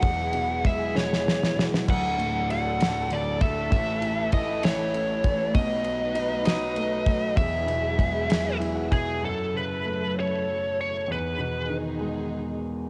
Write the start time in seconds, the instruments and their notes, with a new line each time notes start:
Already playing: lead electric guitar F#5
0.02 grand piano E1 E2, string section F#3 E4 G#4, kick, ride
0.33 grand piano B2, ride
0.65 grand piano G#3, lead electric guitar E5, kick, ride
0.95 grand piano B2, lead electric guitar C#5, snare
1.13 snare
1.26 grand piano E3, snare
1.43 snare
1.56 grand piano B2, snare
1.74 snare
1.87 grand piano D1 D2, string section D4 A4, lead electric guitar F#5, kick, crash
2.18 grand piano A2, ride
2.49 grand piano F#3, lead electric guitar F#5, ride
2.80 grand piano A2, snare, ride
3.11 grand piano D3, lead electric guitar D5, ride
3.41 grand piano A2, lead electric guitar E5, kick, ride
3.70 grand piano A1 A2, string section A3 E4, kick, ride
4.02 grand piano E3, ride
4.32 grand piano E4, lead electric guitar D#5, kick, ride
4.63 grand piano E3, lead electric guitar C#5, snare, ride
4.94 grand piano C#4, ride
5.24 grand piano E3, kick, ride
5.54 grand piano B1 B2, string section D#4 B4, lead electric guitar D#5, kick, ride
5.84 grand piano F#3, ride
6.15 grand piano D#4, ride
6.45 grand piano F#3, lead electric guitar D#5, snare, ride
6.76 grand piano A3, ride
7.06 grand piano F#3, kick, ride
7.36 grand piano E1 E2, string section F#3 E4 G#4, lead electric guitar E5, kick, ride
7.67 grand piano B2, ride
7.98 grand piano G#3, kick, ride
8.29 grand piano B2, snare, ride
8.60 grand piano E3 E5, ride
8.75 grand piano F#5
8.91 grand piano B2 G#5, lead electric guitar G#4, kick, ride
9.22 grand piano F#2, string section F#3 E4 A4, lead electric guitar A4
9.54 grand piano C#3, lead electric guitar B4
9.85 grand piano A3
10.15 grand piano C#4
10.20 lead electric guitar C#5
10.81 lead electric guitar C#5
11.08 grand piano E2, string section D#3 D#4 G#4, lead electric guitar B4
11.39 grand piano B2
11.70 grand piano D#3
12.01 grand piano G#3